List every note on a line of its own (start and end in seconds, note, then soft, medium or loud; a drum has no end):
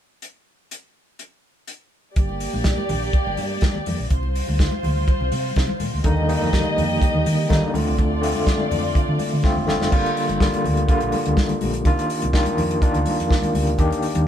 0.22 closed hi-hat medium
0.71 closed hi-hat medium
1.19 closed hi-hat soft
1.68 closed hi-hat medium
2.16 2.46 G1 medium
2.16 4.07 A#3 medium
2.16 4.06 G4 medium
2.16 4.07 D5 medium
2.16 kick loud
2.16 closed hi-hat medium
2.29 muted conga soft
2.40 open hi-hat medium
2.53 2.73 A#1 medium
2.53 high conga medium
2.64 kick loud
2.64 snare loud
2.64 closed hi-hat medium
2.64 muted conga soft
2.77 high conga medium
2.89 3.09 A#1 medium
2.89 open hi-hat medium
2.89 low conga medium
3.13 kick loud
3.13 closed hi-hat medium
3.27 3.35 G1 medium
3.27 muted conga soft
3.37 3.57 G2 medium
3.37 open hi-hat medium
3.37 high conga medium
3.61 3.73 G2 medium
3.61 kick loud
3.61 snare loud
3.61 closed hi-hat medium
3.61 muted conga soft
3.61 high conga medium
3.74 high conga soft
3.74 low conga medium
3.86 3.97 F2 medium
3.86 open hi-hat medium
3.86 high conga medium
3.86 low conga medium
4.00 4.09 A#1 medium
4.10 4.40 C2 medium
4.10 6.01 G3 medium
4.10 6.01 F4 medium
4.10 6.01 C5 medium
4.10 kick medium
4.10 closed hi-hat medium
4.23 muted conga soft
4.35 open hi-hat medium
4.47 4.67 D2 medium
4.47 high conga medium
4.59 kick loud
4.59 snare loud
4.59 closed hi-hat medium
4.59 muted conga soft
4.71 muted conga soft
4.71 high conga medium
4.83 5.03 D2 medium
4.83 open hi-hat medium
4.83 low conga medium
5.07 kick loud
5.07 closed hi-hat medium
5.07 muted conga soft
5.21 5.30 C2 loud
5.21 muted conga soft
5.32 5.51 C3 medium
5.32 open hi-hat medium
5.32 high conga medium
5.56 5.66 C3 medium
5.56 kick loud
5.56 snare medium
5.56 closed hi-hat medium
5.56 muted conga soft
5.56 high conga medium
5.67 muted conga soft
5.67 high conga medium
5.67 low conga medium
5.80 5.91 A#2 medium
5.80 open hi-hat medium
5.80 high conga medium
5.80 low conga medium
5.94 6.02 D2 medium
6.04 6.34 D#2 loud
6.04 6.25 D3 medium
6.04 6.25 G3 medium
6.04 7.71 A#3 medium
6.04 6.26 A#3 medium
6.04 6.26 D#4 loud
6.04 7.71 G4 medium
6.04 7.71 D#5 medium
6.04 kick loud
6.04 closed hi-hat medium
6.04 muted conga soft
6.17 muted conga soft
6.28 7.11 D#3 medium
6.28 7.11 G3 medium
6.28 7.11 A#3 medium
6.28 7.12 D#4 medium
6.28 open hi-hat medium
6.41 6.61 F2 medium
6.41 high conga medium
6.53 kick loud
6.53 snare loud
6.53 closed hi-hat medium
6.53 muted conga soft
6.65 muted conga soft
6.65 high conga medium
6.76 6.97 F2 loud
6.76 open hi-hat medium
6.76 low conga medium
7.01 kick loud
7.01 closed hi-hat medium
7.01 muted conga soft
7.14 7.23 D#2 loud
7.14 muted conga soft
7.25 7.45 D#3 loud
7.25 open hi-hat medium
7.25 high conga medium
7.49 7.70 D3 medium
7.49 7.60 D#3 loud
7.49 7.70 G3 medium
7.49 7.71 A#3 medium
7.49 7.71 D#4 medium
7.49 kick loud
7.49 snare medium
7.49 closed hi-hat medium
7.49 muted conga soft
7.49 high conga medium
7.61 high conga medium
7.61 low conga medium
7.73 7.84 D2 medium
7.73 8.15 D3 medium
7.73 8.15 A3 medium
7.73 9.88 A3 medium
7.73 8.16 C4 medium
7.73 9.88 F4 medium
7.73 8.16 F4 medium
7.73 9.88 D5 medium
7.73 open hi-hat medium
7.73 high conga medium
7.73 low conga medium
7.88 7.99 C2 medium
7.99 8.36 D2 loud
7.99 kick loud
7.99 closed hi-hat medium
8.21 9.04 D3 medium
8.21 9.05 A3 medium
8.21 9.05 C4 medium
8.21 9.05 F4 medium
8.21 open hi-hat medium
8.35 8.55 F2 medium
8.35 high conga medium
8.46 kick loud
8.46 snare loud
8.46 closed hi-hat medium
8.46 muted conga soft
8.59 muted conga soft
8.59 high conga medium
8.71 8.90 F2 medium
8.71 open hi-hat medium
8.71 low conga loud
8.95 kick loud
8.95 closed hi-hat medium
9.08 9.17 D3 medium
9.08 muted conga soft
9.19 open hi-hat medium
9.19 high conga medium
9.33 9.42 D3 medium
9.43 9.64 D3 medium
9.43 9.64 A3 medium
9.43 9.64 C4 medium
9.43 9.65 F4 loud
9.43 kick loud
9.43 snare medium
9.43 muted conga soft
9.43 high conga medium
9.55 9.66 F1 medium
9.55 high conga medium
9.55 low conga medium
9.67 9.79 G1 medium
9.67 9.88 D3 medium
9.67 9.88 A3 medium
9.67 9.89 C4 medium
9.67 9.89 F4 medium
9.67 snare medium
9.67 high conga medium
9.67 low conga medium
9.81 9.90 F1 medium
9.81 snare medium
9.91 10.02 G1 loud
9.91 10.33 D3 medium
9.91 10.33 G3 medium
9.91 10.34 A#3 medium
9.91 10.34 F4 medium
9.91 kick loud
9.91 crash medium
9.91 muted conga soft
10.04 closed hi-hat medium
10.04 muted conga soft
10.17 open hi-hat medium
10.29 10.48 G1 loud
10.29 closed hi-hat soft
10.29 high conga medium
10.40 10.82 D3 medium
10.40 10.82 G3 medium
10.40 10.82 A#3 medium
10.40 10.82 F4 loud
10.40 kick loud
10.40 snare loud
10.53 closed hi-hat medium
10.53 muted conga soft
10.53 high conga medium
10.64 10.84 D2 medium
10.64 open hi-hat medium
10.64 low conga loud
10.77 closed hi-hat soft
10.88 11.30 D3 medium
10.88 11.30 G3 medium
10.88 11.30 A#3 medium
10.88 11.30 F4 medium
10.88 kick loud
10.88 closed hi-hat medium
10.88 muted conga soft
11.00 11.11 A#1 medium
11.00 closed hi-hat soft
11.00 muted conga soft
11.12 open hi-hat medium
11.12 high conga medium
11.26 11.35 D2 medium
11.26 closed hi-hat soft
11.37 11.60 A#4 medium
11.37 kick loud
11.37 snare loud
11.37 high conga medium
11.49 closed hi-hat medium
11.49 muted conga soft
11.49 high conga medium
11.49 low conga medium
11.61 11.81 A#1 medium
11.61 12.08 G4 medium
11.61 open hi-hat medium
11.61 high conga medium
11.74 closed hi-hat soft
11.85 11.96 C2 loud
11.85 12.27 D#3 medium
11.85 12.27 A#3 medium
11.85 12.27 D4 medium
11.85 12.27 F4 loud
11.85 kick loud
11.85 closed hi-hat medium
11.98 closed hi-hat medium
11.98 muted conga soft
12.10 open hi-hat medium
12.22 12.42 C2 medium
12.22 closed hi-hat soft
12.22 high conga medium
12.33 12.75 D#3 medium
12.33 12.75 A#3 medium
12.33 12.76 D4 medium
12.33 12.76 F4 loud
12.33 kick loud
12.33 snare loud
12.33 muted conga soft
12.46 closed hi-hat soft
12.46 muted conga soft
12.46 high conga medium
12.57 12.77 F2 medium
12.57 open hi-hat medium
12.57 low conga medium
12.71 closed hi-hat soft
12.82 13.23 D#3 medium
12.82 13.23 A#3 medium
12.82 13.24 D4 medium
12.82 13.24 F4 medium
12.82 kick loud
12.82 closed hi-hat medium
12.82 muted conga soft
12.94 13.04 D2 medium
12.94 closed hi-hat soft
12.94 muted conga soft
13.05 open hi-hat medium
13.05 high conga medium
13.20 13.29 F2 medium
13.20 closed hi-hat soft
13.29 13.54 D5 medium
13.29 kick loud
13.29 snare medium
13.29 muted conga soft
13.29 high conga medium
13.42 closed hi-hat medium
13.42 muted conga soft
13.42 high conga medium
13.42 low conga medium
13.53 13.74 D2 medium
13.53 13.78 G4 medium
13.53 open hi-hat medium
13.53 high conga medium
13.67 closed hi-hat soft
13.78 13.89 D#2 loud
13.78 14.20 D#3 medium
13.78 14.20 A#3 medium
13.78 14.20 D4 medium
13.78 14.21 G4 loud
13.78 kick loud
13.78 closed hi-hat medium
13.78 muted conga soft
13.91 closed hi-hat medium
13.91 muted conga soft
14.02 open hi-hat medium
14.15 14.28 D#2 loud
14.15 closed hi-hat soft
14.15 high conga medium